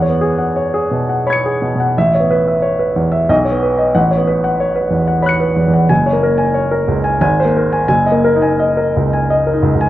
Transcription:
0.00 1.90 E2 soft
0.00 0.31 C#5 soft
0.00 0.14 F#5 medium
0.09 0.46 B3 soft
0.21 0.49 G#4 soft
0.38 0.66 F#5 soft
0.56 0.84 C#5 soft
0.74 1.01 G#4 soft
0.91 1.19 B2 soft
1.09 1.37 F#5 soft
1.26 1.54 C#5 soft
1.26 1.92 B5 soft
1.26 1.94 G#6 soft
1.33 1.95 C#7 soft
1.46 1.72 G#4 soft
1.62 1.74 B2 soft
1.75 1.97 B2 soft
1.80 1.96 F#5 soft
1.98 3.27 A1 soft
1.98 2.24 E5 medium
2.15 2.41 C#5 soft
2.20 2.55 B3 soft
2.31 2.57 B4 soft
2.48 2.74 E5 soft
2.62 2.89 C#5 soft
2.79 3.06 B4 soft
2.96 3.23 E2 soft
3.12 3.29 E5 soft
3.29 3.92 B1 medium
3.29 3.56 D#5 medium
3.45 3.71 C#5 soft
3.51 3.86 B3 soft
3.63 3.88 B4 soft
3.78 3.95 D#5 soft
3.95 5.86 A1 medium
3.95 4.20 F#5 medium
4.11 4.36 C#5 soft
4.17 4.50 B3 soft
4.27 4.52 B4 soft
4.44 4.68 F#5 soft
4.60 4.84 C#5 soft
4.76 5.00 B4 soft
4.90 5.16 E2 soft
5.08 5.33 F#5 soft
5.22 5.49 C#5 soft
5.22 5.86 B5 soft
5.22 5.88 F#6 soft
5.29 5.89 C#7 soft
5.40 5.67 B4 soft
5.56 5.66 E2 soft
5.67 5.90 E2 soft
5.73 5.90 F#5 soft
5.89 7.18 F#1 soft
5.89 6.15 G#5 medium
6.06 6.32 C#5 soft
6.13 6.46 A#3 soft
6.23 6.48 A#4 soft
6.38 6.64 G#5 soft
6.54 6.81 C#5 soft
6.71 6.98 A#4 soft
6.88 7.15 C#2 soft
7.04 7.20 G#5 soft
7.21 7.86 G#1 medium
7.21 7.48 G#5 medium
7.40 7.66 C5 soft
7.45 7.80 A#3 soft
7.57 7.82 A#4 soft
7.72 7.87 G#5 soft
7.88 9.89 F#1 medium
7.88 8.15 G#5 medium
8.06 8.33 D#5 soft
8.12 8.48 A#3 soft
8.24 8.51 A#4 soft
8.36 8.73 D#4 soft
8.42 8.69 G#5 soft
8.60 8.87 D#5 soft
8.77 9.05 A#4 soft
8.97 9.23 C#2 soft
9.13 9.40 G#5 soft
9.30 9.57 D#5 soft
9.47 9.73 A#4 soft
9.53 9.89 D#4 soft
9.62 9.73 C#2 soft
9.75 9.89 C#2 soft
9.81 9.89 G#5 soft

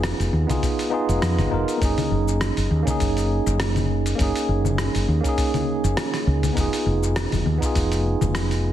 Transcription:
0.00 0.12 F1 medium
0.00 0.47 B3 medium
0.00 0.48 D#4 medium
0.00 0.49 F4 medium
0.00 0.51 G#4 medium
0.00 cross-stick loud
0.00 open hi-hat medium
0.04 shaker medium
0.20 0.29 F1 medium
0.20 open hi-hat soft
0.20 shaker soft
0.33 0.44 D#2 medium
0.47 0.88 B3 medium
0.47 0.89 D#4 medium
0.47 0.90 F4 medium
0.47 0.90 G#4 medium
0.47 kick loud
0.47 open hi-hat soft
0.47 low conga medium
0.47 shaker medium
0.62 kick loud
0.62 open hi-hat medium
0.62 shaker medium
0.79 open hi-hat soft
0.79 shaker soft
0.90 1.47 B3 medium
0.90 1.48 D#4 medium
0.90 1.49 F4 medium
0.94 1.49 G#4 loud
1.09 1.18 F1 medium
1.09 open hi-hat soft
1.09 shaker medium
1.22 1.40 F2 medium
1.22 cross-stick loud
1.22 open hi-hat medium
1.22 shaker medium
1.38 1.48 G#1 medium
1.38 cross-stick soft
1.38 open hi-hat soft
1.38 low conga medium
1.38 shaker soft
1.50 1.63 F1 medium
1.50 1.77 B3 medium
1.50 1.78 D#4 medium
1.50 1.79 F4 medium
1.50 1.79 A#4 medium
1.68 open hi-hat soft
1.68 shaker medium
1.77 1.93 F#1 medium
1.77 2.81 A#3 medium
1.77 2.82 C#4 medium
1.77 kick loud
1.82 2.84 D#4 medium
1.82 2.85 G#4 medium
1.82 open hi-hat medium
1.82 shaker medium
1.98 open hi-hat soft
1.98 low conga medium
1.98 shaker soft
2.11 2.50 F#1 medium
2.28 shaker medium
2.41 cross-stick medium
2.41 open hi-hat medium
2.41 shaker medium
2.57 2.67 F#1 medium
2.57 open hi-hat soft
2.57 shaker soft
2.71 2.82 D#2 medium
2.83 4.14 A#3 medium
2.83 4.15 C#4 medium
2.83 kick loud
2.87 4.16 D#4 medium
2.87 4.18 G#4 medium
2.87 open hi-hat soft
2.87 low conga medium
2.87 shaker medium
3.00 3.39 F#1 medium
3.00 kick loud
3.00 open hi-hat medium
3.00 shaker medium
3.17 open hi-hat soft
3.17 shaker soft
3.46 4.13 F#1 loud
3.46 shaker medium
3.60 cross-stick medium
3.60 open hi-hat medium
3.60 shaker medium
3.76 open hi-hat soft
3.76 low conga medium
3.76 shaker soft
4.06 open hi-hat soft
4.06 shaker medium
4.15 4.31 F#1 medium
4.15 5.19 A#3 medium
4.15 5.20 C#4 medium
4.15 kick loud
4.15 open hi-hat medium
4.20 5.21 D#4 medium
4.20 5.23 G#4 medium
4.20 shaker medium
4.36 open hi-hat soft
4.36 shaker soft
4.49 4.87 F#1 medium
4.65 low conga medium
4.65 shaker medium
4.78 cross-stick medium
4.78 open hi-hat medium
4.78 shaker medium
4.95 5.04 F#1 medium
4.95 open hi-hat soft
4.95 shaker soft
5.08 5.20 D#2 medium
5.21 6.52 A#3 medium
5.21 6.53 C#4 medium
5.21 kick medium
5.21 open hi-hat soft
5.25 6.54 D#4 medium
5.25 6.55 G#4 medium
5.25 shaker medium
5.38 kick loud
5.38 open hi-hat medium
5.38 shaker medium
5.54 open hi-hat soft
5.54 low conga medium
5.54 shaker soft
5.84 5.93 F#1 medium
5.84 shaker medium
5.97 cross-stick medium
5.97 open hi-hat medium
5.97 shaker medium
6.14 cross-stick soft
6.14 open hi-hat soft
6.14 shaker soft
6.27 6.49 C#2 medium
6.43 open hi-hat soft
6.43 low conga medium
6.43 shaker medium
6.53 6.68 F1 medium
6.53 7.56 B3 medium
6.53 7.58 D#4 medium
6.53 kick loud
6.53 open hi-hat medium
6.57 7.59 F4 medium
6.57 7.60 G#4 medium
6.57 shaker medium
6.73 open hi-hat soft
6.73 shaker soft
6.86 7.25 F1 medium
7.03 shaker medium
7.16 cross-stick loud
7.16 open hi-hat medium
7.16 shaker medium
7.32 7.42 F1 medium
7.32 open hi-hat soft
7.32 low conga medium
7.32 shaker soft
7.46 7.57 D#2 medium
7.58 8.73 B3 medium
7.58 8.73 D#4 medium
7.58 kick loud
7.62 8.73 F4 medium
7.62 8.73 G#4 medium
7.62 open hi-hat soft
7.62 shaker medium
7.75 8.14 F1 medium
7.75 kick loud
7.75 open hi-hat medium
7.75 shaker soft
7.92 open hi-hat soft
7.92 shaker soft
8.21 8.73 F1 loud
8.21 low conga medium
8.21 shaker medium
8.35 cross-stick medium
8.35 open hi-hat medium
8.35 shaker soft
8.51 open hi-hat soft
8.51 shaker soft

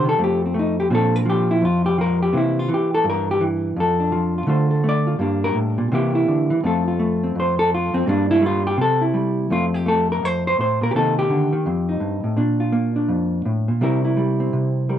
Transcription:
0.00 0.17 C3 medium
0.00 0.18 G4 soft
0.05 0.18 D#3 medium
0.05 0.20 A4 medium
0.18 0.90 F2 medium
0.18 0.53 A3 soft
0.18 0.46 C4 soft
0.24 0.44 G4 medium
0.46 0.57 C4 medium
0.54 0.89 A3 medium
0.59 0.79 D#4 medium
0.80 0.92 G4 medium
0.90 1.62 A#2 medium
0.90 1.24 F3 medium
0.90 2.34 C4 medium
0.90 1.50 D4 medium
0.95 1.16 A4 medium
1.16 1.27 A#4 loud
1.25 1.97 F3 medium
1.30 1.50 G4 medium
1.51 1.63 E4 medium
1.62 2.33 F2 medium
1.62 1.85 F4 medium
1.86 1.98 G4 medium
1.98 2.32 F3 medium
1.98 2.22 A#4 medium
2.22 2.34 G4 medium
2.33 2.69 C3 medium
2.33 2.67 E3 soft
2.33 3.75 A#3 soft
2.37 2.58 E4 medium
2.59 2.71 F4 loud
2.68 3.39 E3 medium
2.74 2.94 G4 medium
2.94 3.06 A4 loud
3.04 3.74 G2 medium
3.10 3.30 A#4 medium
3.31 3.42 G4 loud
3.41 3.75 E3 medium
3.76 4.46 F2 medium
3.76 4.37 A4 medium
4.00 4.47 D4 soft
4.12 4.46 F3 medium
4.38 4.47 F4 medium
4.47 5.17 D3 medium
4.47 4.82 A3 medium
4.47 5.06 F4 medium
4.47 4.70 A4 soft
4.47 4.85 C5 soft
4.71 5.18 A4 medium
4.84 5.18 A3 medium
4.89 5.44 D5 loud
5.07 5.18 F4 soft
5.19 5.54 G2 medium
5.19 5.92 G3 soft
5.19 5.90 A#3 medium
5.19 5.90 D4 medium
5.44 5.56 A#4 loud
5.55 5.78 A2 medium
5.78 5.91 A#2 medium
5.92 6.27 C3 medium
5.92 6.49 E3 medium
5.92 6.62 A#3 medium
5.92 6.14 E4 medium
5.92 6.66 G4 medium
6.15 6.62 E4 medium
6.28 6.50 D3 medium
6.50 6.63 E3 medium
6.64 7.34 F2 medium
6.64 6.98 A3 medium
6.64 7.22 C4 medium
6.64 6.87 F4 medium
6.64 7.36 A4 medium
6.88 7.73 F4 soft
6.99 8.05 A3 medium
7.24 7.93 C4 soft
7.35 7.92 F2 medium
7.40 7.59 C5 medium
7.59 7.71 A4 loud
7.74 7.95 F4 medium
7.94 8.06 F2 medium
7.94 8.07 C4 medium
8.07 8.77 G2 medium
8.07 8.40 G3 medium
8.07 8.77 A#3 medium
8.07 8.30 D4 medium
8.31 8.43 E4 loud
8.41 8.76 G3 medium
8.46 8.66 F4 medium
8.67 8.79 G4 loud
8.77 9.48 C3 medium
8.81 9.02 A4 loud
9.01 9.48 E4 medium
9.14 9.48 G3 medium
9.50 10.22 F2 medium
9.50 9.85 A3 soft
9.50 10.95 C4 medium
9.50 9.65 F4 medium
9.74 10.22 G4 medium
9.86 10.92 A3 medium
9.86 10.09 A4 medium
10.12 10.25 A#4 medium
10.23 10.58 F2 medium
10.23 10.46 C5 loud
10.47 10.59 C5 loud
10.59 10.80 A2 medium
10.59 10.82 C5 loud
10.81 10.94 A#2 medium
10.81 10.91 A#4 loud
10.91 11.29 C3 medium
10.91 10.94 G4 medium
10.95 11.51 D#3 soft
10.95 11.65 A#3 soft
10.95 11.65 D#4 soft
10.95 11.17 A4 medium
11.19 12.25 G4 medium
11.30 11.52 D3 medium
11.53 11.65 D#3 medium
11.66 12.00 F2 medium
11.66 12.37 C4 soft
11.89 12.36 D#4 soft
12.00 12.23 G2 medium
12.24 12.37 A2 medium
12.37 13.09 A#2 medium
12.37 12.95 D4 medium
12.60 13.79 F4 medium
12.72 13.79 A#3 medium
12.96 13.79 D4 medium
13.08 13.44 F2 medium
13.45 13.68 A2 medium
13.68 13.81 A#2 medium
13.81 14.52 C3 medium
13.81 14.16 G3 medium
13.81 14.40 C4 medium
13.81 14.03 E4 medium
13.81 14.89 A#4 medium
14.05 14.99 E4 medium
14.17 14.88 G3 medium
14.40 14.99 C4 medium
14.53 14.99 C3 medium
14.89 14.99 G3 medium
14.89 14.99 A#4 medium

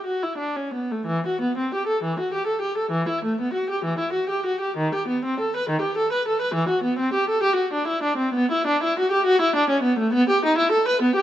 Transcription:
0.06 0.23 F#4 soft
0.23 0.40 E4 soft
0.38 0.56 D4 soft
0.56 0.75 C#4 soft
0.74 0.92 B3 soft
0.92 1.09 A3 soft
1.06 1.24 E3 medium
1.27 1.42 F#4 soft
1.42 1.57 B3 soft
1.58 1.73 C4 soft
1.74 1.89 G4 soft
1.87 2.02 A4 soft
2.04 2.18 E3 medium
2.20 2.34 F#4 soft
2.34 2.48 G4 soft
2.47 2.62 A4 soft
2.62 2.77 G4 soft
2.78 2.93 A4 soft
2.91 3.07 E3 medium
3.09 3.23 E4 soft
3.25 3.39 A3 soft
3.41 3.55 B3 soft
3.54 3.69 F#4 soft
3.70 3.84 G4 soft
3.85 3.99 E3 medium
3.99 4.14 E4 soft
4.13 4.29 F#4 soft
4.29 4.45 G4 soft
4.46 4.62 F#4 soft
4.61 4.77 G4 soft
4.77 4.93 D#3 medium
4.95 5.09 G4 medium
5.08 5.24 B3 soft
5.25 5.39 C4 soft
5.40 5.54 A4 medium
5.56 5.70 B4 medium
5.70 5.83 D#3 medium
5.81 5.97 G4 soft
5.98 6.12 A4 medium
6.13 6.27 B4 medium
6.28 6.42 A4 medium
6.42 6.56 B4 medium
6.55 6.70 E3 medium
6.69 6.84 F#4 medium
6.84 6.99 B3 medium
6.99 7.14 C4 medium
7.14 7.29 G4 medium
7.30 7.44 A4 medium
7.43 7.58 G4 medium
7.56 7.72 F#4 medium
7.73 7.88 D4 medium
7.88 8.04 E4 medium
8.03 8.19 D4 medium
8.18 8.34 C4 medium
8.34 8.50 B3 medium
8.52 8.66 E4 medium
8.67 8.82 D4 medium
8.83 8.97 E4 medium
8.99 9.12 F#4 medium
9.12 9.26 G4 medium
9.26 9.40 F#4 medium
9.41 9.55 E4 medium
9.56 9.70 D4 medium
9.70 9.84 C#4 medium
9.83 9.98 B3 medium
9.99 10.13 A3 medium
10.13 10.27 B3 medium
10.29 10.43 G4 medium
10.45 10.58 D#4 medium
10.58 10.72 E4 medium
10.72 10.86 A4 medium
10.88 11.02 B4 medium
11.02 11.16 B3 medium
11.16 11.22 G4 medium

